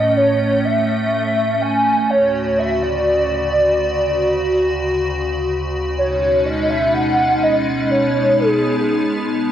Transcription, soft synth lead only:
Already playing: D#5
0.17 C#5
0.65 E5
1.13 E5
1.62 G#5
2.10 C#5
2.58 E5
2.83 D5
5.98 C#5
6.46 D#5
6.70 E5
6.94 F#5
7.43 D#5
7.91 C#5
8.39 G#4

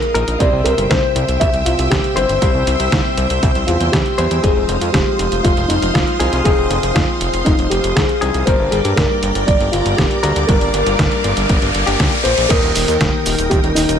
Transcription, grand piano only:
Already playing: A#4
0.39 D5
0.64 A#4
0.89 C5
1.40 E5
1.65 F4
1.90 G4
2.15 C5
3.67 F4
3.92 G4
4.42 G#4
4.93 G4
5.43 F4
5.68 D#4
5.93 F4
6.44 G#4
6.94 F4
7.45 D#4
7.70 G4
7.95 G#4
8.46 C5
8.71 G#4
8.96 A#4
9.46 D5
9.72 F4
9.97 G4
10.47 A#4
12.24 C5
12.49 A#4
13.50 G4
13.75 D#4

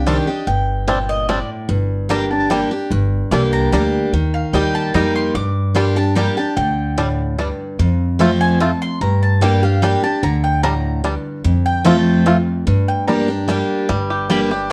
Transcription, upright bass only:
Already playing: C2
0.47 G1
1.69 G1
2.91 G1
3.31 C2
3.72 D2
4.13 D#2
4.53 D#2
4.94 F2
5.34 G2
6.57 D2
7.79 F2
9.01 G2
10.23 D2
11.45 F2
12.67 G2
13.90 G1

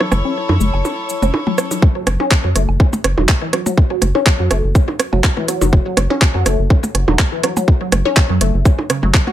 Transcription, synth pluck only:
0.01 F#3
0.25 C#4
0.49 F#3
0.60 A3
1.22 C#4
1.47 F#3
1.58 C#4
1.71 F#3
1.96 F#3
2.20 C#4
2.44 F#3
2.56 A3
3.18 F#3
3.42 E3
3.53 F#3
3.66 F#3
3.91 F#3
4.15 C#4
4.40 F#3
4.51 A3
5.13 F#3
5.37 E3
5.48 F#3
5.62 F#3
5.86 F#3
6.10 C#4
6.35 F#3
6.46 A3
7.08 F#3
7.32 E3
7.43 F#3
7.57 F#3
7.81 F#3
8.05 C#4
8.30 F#3
8.41 A3
8.90 C#3
9.03 F#3
9.27 F#4

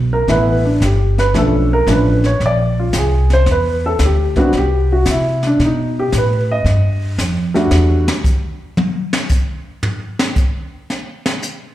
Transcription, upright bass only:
Already playing: B1
0.28 A1
0.80 G1
1.34 B1
1.87 A1
2.40 A#1
2.93 C2
3.46 E2
4.00 D2
4.53 C2
5.06 C3
5.59 B2
6.13 A2
6.65 G2
7.18 F2
7.71 E2

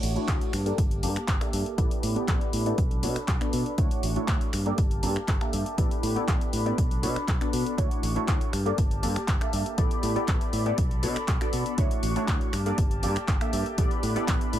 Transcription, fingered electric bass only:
0.03 A1
0.16 muted fingered electric bass stroke
0.28 D2
0.53 G2
0.78 G1
1.03 G2
1.16 muted fingered electric bass stroke
1.28 G1
1.53 G2
1.78 A1
2.03 A2
2.16 muted fingered electric bass stroke
2.28 A1
2.53 A2
2.78 B1
3.03 B2
3.16 muted fingered electric bass stroke
3.28 B1
3.53 B2
3.78 D2
4.03 A1
4.16 muted fingered electric bass stroke
4.28 D2
4.53 G2
4.78 G1
5.03 G2
5.16 muted fingered electric bass stroke
5.28 G1
5.53 G2
5.78 A1
6.03 A2
6.16 muted fingered electric bass stroke
6.28 A1
6.53 A2
6.78 B1
7.03 B2
7.16 muted fingered electric bass stroke
7.28 B1
7.53 B2
7.78 D2
8.03 A1
8.16 muted fingered electric bass stroke
8.28 D2
8.53 G2
8.78 G1
9.03 G2
9.16 muted fingered electric bass stroke
9.28 G1
9.53 G2
9.78 A1
10.03 A2
10.16 muted fingered electric bass stroke
10.28 A1
10.53 A2
10.78 B1
11.03 B2
11.16 muted fingered electric bass stroke
11.28 B1
11.53 B2
11.78 D2
12.03 A1
12.16 muted fingered electric bass stroke
12.28 D2
12.53 G2
12.78 G1
13.03 G2
13.16 muted fingered electric bass stroke
13.28 G1
13.53 G2
13.78 A1
14.03 A2
14.16 muted fingered electric bass stroke
14.28 A1
14.53 A2

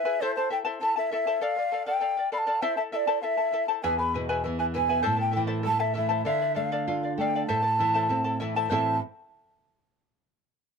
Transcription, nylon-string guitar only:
3.84 E2
4.16 B2
4.46 E3
4.76 B2
5.06 A2
5.37 E3
5.67 A3
5.97 E3
6.26 D3
6.56 A3
6.88 F4
7.18 A3
7.49 A2
7.80 E3
8.10 C4
8.42 E3
8.70 A2 E3 C4 E4 A4 E5

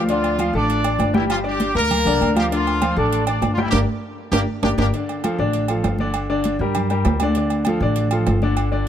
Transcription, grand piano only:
0.09 D3 D4 D5
0.39 F3 F4 F5
0.55 A3 A4 A5
0.84 D4 D5 D6
1.14 G3 G4 G5
1.44 D4 D5 D6
1.75 A#3 A#4 A#5
2.06 D3 D4 D5
2.35 F3 F4 F5
2.51 D3 D4 D5
2.82 F3 F4 F5
2.97 A3 A4 A5
3.27 D4 D5 D6
3.58 G3 G4 G5
3.72 D4 G4 A#4
4.33 D4 G4 A#4
4.64 D4 G4 A#4
4.79 D4 G4 A#4
4.94 D3 D4 D5
5.24 F3 F4 A4
5.39 D3 D4 D5
5.69 F3 F4 A4
6.00 D3 D4 D5
6.29 D3 D4 D5
6.61 G3 G4 A#4
6.91 G3 G4 A#4
7.22 D3 D4 D5
7.37 D3 D4 D5
7.67 F3 F4 A4
7.82 D3 D4 D5
8.12 F3 F4 A4
8.43 D3 D4 D5
8.72 D3 D4 D5

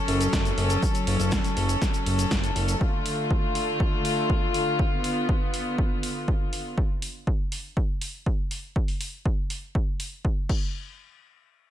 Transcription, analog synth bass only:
0.08 F#1
0.33 F#1
0.58 F#1
1.07 F#1
1.20 F#1
1.57 F#1
2.06 F#1
2.31 F#1
2.56 F#1

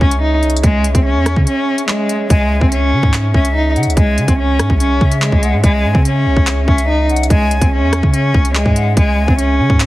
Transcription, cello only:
0.01 C#4
0.22 D#4
0.64 G#3
0.95 C4
1.05 C#4
1.47 C#4
1.88 G#3
2.30 G#3
2.62 C4
2.72 C#4
3.34 C#4
3.55 D#4
3.97 G#3
4.28 C4
4.39 C#4
4.81 C#4
5.22 G#3
5.64 G#3
5.95 C4
6.05 C#4
6.68 C#4
6.89 D#4
7.30 G#3
7.62 C4
7.72 C#4
8.13 C#4
8.55 G#3
8.97 G#3
9.28 C4
9.38 C#4

